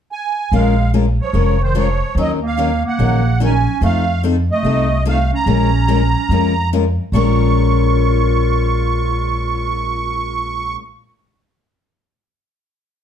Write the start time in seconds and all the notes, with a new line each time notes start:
0.12 G#5
0.52 A#1 F3 G#3 C#4 F4 A#4 F5
0.94 F3 G#3 C#4 F4 A#4
1.21 F3 C#5
1.33 F1 F3 G#3 C#4 F4 A#4
1.62 D#3 C5
1.75 F3 G#3 C#4 F4 A#4 C#5
2.15 D#2 D#3 F#3 C#4 D#4 A#4
2.21 D#5
2.42 A#3
2.47 F5
2.58 D#3 F#3 C#4 D#4 A#4
2.85 A#3 F#5
2.99 A#1 D#3 F#3 C#4 D#4 A#4
3.40 D#3 F#3 C#4 D#4 A#4
3.45 G#5
3.81 F2 F3 A3 C4 D#4 A4 F5
4.23 F3 C4 D#4 A4
4.50 A3 D#5
4.63 C2 F3 C4 D#4 A4
5.05 F3 A3 C4 D#4 A4 F5
5.33 C#4 A#5
5.46 A#1 F3 G#3 C#4 F4 A#4
5.88 F3 G#3 C#4 F4 A#4
6.29 F2 F3 G#3 C#4 F4 A#4
6.73 F3 G#3 C#4 F4 A#4
7.12 A#1 A#2 F3 G#3 C#4 F4 A#4 C#6